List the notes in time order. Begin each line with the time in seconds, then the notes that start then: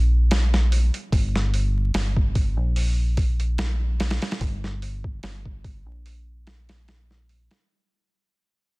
Already playing: A#1
0.31 snare, open hi-hat
0.54 snare
0.72 open hi-hat
0.94 closed hi-hat
1.12 G1, kick, open hi-hat
1.36 snare
1.54 open hi-hat
1.94 G1, snare, open hi-hat
2.17 kick
2.35 kick, open hi-hat
2.57 A#1
2.76 open hi-hat
3.17 kick, open hi-hat
3.40 closed hi-hat
3.58 snare, open hi-hat
4.00 snare, open hi-hat
4.10 snare, open hi-hat
4.22 snare, open hi-hat
4.31 snare, open hi-hat
4.41 G1, kick, open hi-hat
4.64 snare
4.82 open hi-hat
5.04 kick
5.23 G1, snare, open hi-hat
5.46 kick
5.64 kick, open hi-hat
5.86 A#1
6.06 open hi-hat
6.47 snare, open hi-hat
6.69 snare, open hi-hat
6.88 snare, open hi-hat
7.11 snare
7.29 open hi-hat
7.51 snare, open hi-hat